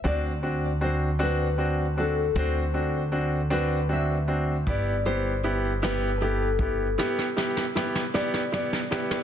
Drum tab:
HH |------------|------------|x-x-x-x-x-x-|------------|
SD |------------|------------|------o-----|oooooooooooo|
BD |------------|------------|o---------o-|------------|